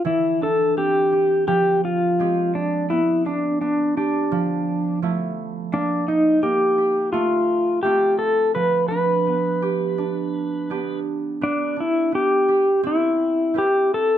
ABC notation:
X:1
M:4/4
L:1/8
Q:1/4=84
K:C
V:1 name="Pedal steel guitar"
E A G2 G F2 D | E D D D3 z2 | D _E G2 F2 G A | B B6 z |
D E G2 E2 G A |]
V:2 name="Harp"
E, D C G F,2 [_A,CG]2 | B, D B, G F,2 [F,A,E]2 | _B, _E B, G A,2 [A,CF]2 | F, D B, G D2 [B,DG]2 |
B, D B, G C2 [CEB]2 |]